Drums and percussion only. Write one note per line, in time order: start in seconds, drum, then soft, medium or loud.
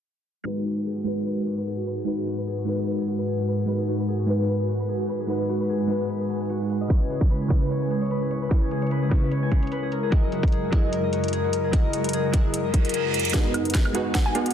0.46 closed hi-hat medium
0.66 closed hi-hat medium
0.77 closed hi-hat soft
0.81 closed hi-hat medium
0.86 closed hi-hat medium
1.06 closed hi-hat medium
1.26 closed hi-hat medium
1.46 closed hi-hat medium
1.57 closed hi-hat soft
1.62 closed hi-hat medium
1.66 closed hi-hat medium
1.87 closed hi-hat medium
2.07 closed hi-hat medium
2.27 closed hi-hat medium
2.38 closed hi-hat soft
2.42 closed hi-hat medium
2.47 closed hi-hat medium
2.67 closed hi-hat medium
2.87 closed hi-hat medium
3.07 closed hi-hat medium
3.19 closed hi-hat soft
3.23 closed hi-hat medium
3.28 closed hi-hat medium
3.48 closed hi-hat medium
3.68 closed hi-hat medium
3.88 closed hi-hat medium
3.99 closed hi-hat soft
4.04 closed hi-hat medium
4.08 closed hi-hat medium
4.28 closed hi-hat medium
4.48 closed hi-hat medium
4.69 closed hi-hat medium
4.80 closed hi-hat soft
4.84 closed hi-hat medium
4.89 closed hi-hat medium
5.09 closed hi-hat medium
5.29 closed hi-hat medium
5.49 closed hi-hat medium
5.60 closed hi-hat soft
5.65 closed hi-hat medium
5.69 closed hi-hat medium
5.89 closed hi-hat medium
6.10 closed hi-hat medium
6.30 closed hi-hat medium
6.41 closed hi-hat soft
6.45 closed hi-hat medium
6.50 closed hi-hat medium
6.70 closed hi-hat medium
6.90 kick loud
6.90 closed hi-hat medium
7.10 closed hi-hat medium
7.21 kick loud
7.21 closed hi-hat soft
7.26 closed hi-hat medium
7.30 closed hi-hat medium
7.50 kick loud
7.50 closed hi-hat medium
7.71 closed hi-hat medium
7.91 closed hi-hat medium
8.02 closed hi-hat soft
8.06 closed hi-hat medium
8.11 closed hi-hat medium
8.31 closed hi-hat medium
8.51 kick loud
8.51 closed hi-hat medium
8.71 closed hi-hat medium
8.82 closed hi-hat soft
8.87 closed hi-hat medium
8.91 closed hi-hat medium
9.11 kick loud
9.11 closed hi-hat medium
9.32 closed hi-hat medium
9.52 kick medium
9.52 closed hi-hat medium
9.63 closed hi-hat soft
9.67 closed hi-hat medium
9.72 closed hi-hat medium
9.92 closed hi-hat medium
10.12 kick loud
10.12 closed hi-hat medium
10.32 closed hi-hat medium
10.43 kick medium
10.43 closed hi-hat soft
10.48 closed hi-hat medium
10.52 closed hi-hat medium
10.73 kick medium
10.73 closed hi-hat medium
10.93 closed hi-hat medium
11.13 closed hi-hat medium
11.24 closed hi-hat soft
11.28 closed hi-hat medium
11.33 closed hi-hat medium
11.53 closed hi-hat medium
11.73 kick loud
11.73 closed hi-hat medium
11.93 closed hi-hat medium
12.04 closed hi-hat soft
12.09 closed hi-hat medium
12.13 closed hi-hat medium
12.34 kick loud
12.34 closed hi-hat medium
12.54 closed hi-hat medium
12.74 kick medium
12.74 closed hi-hat medium
12.85 closed hi-hat soft
12.89 closed hi-hat medium
12.94 closed hi-hat medium
13.14 closed hi-hat medium
13.20 closed hi-hat medium
13.25 closed hi-hat medium
13.30 closed hi-hat medium
13.34 kick medium
13.34 snare soft
13.34 closed hi-hat medium
13.54 closed hi-hat medium
13.54 high woodblock medium
13.65 closed hi-hat soft
13.70 closed hi-hat medium
13.74 kick medium
13.74 snare soft
13.74 closed hi-hat medium
13.85 high woodblock medium
13.95 closed hi-hat medium
14.15 kick loud
14.15 snare medium
14.15 closed hi-hat medium
14.35 closed hi-hat medium
14.46 closed hi-hat soft
14.51 closed hi-hat medium